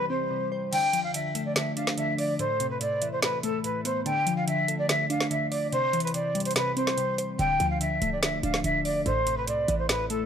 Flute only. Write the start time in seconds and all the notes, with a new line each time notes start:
0.10 C5
0.73 G5
1.04 F5
1.14 E5
1.46 D5
1.56 E5
1.77 F5
1.98 E5
2.18 D5
2.39 C5
2.70 B4
2.81 D5
3.12 C5
3.23 B4
3.43 A4
3.64 B4
3.85 C5
4.06 G5
4.37 F5
4.47 E5
4.79 D5
4.89 E5
5.10 F5
5.31 E5
5.51 D5
5.72 C5
6.04 B4
6.14 D5
6.45 C5
6.56 B4
6.77 C5
7.39 G5
7.70 F5
7.81 E5
8.12 D5
8.23 E5
8.43 F5
8.64 E5
8.85 D5
9.06 C5
9.37 B4
9.48 D5
9.79 C5
9.89 B4
10.10 A4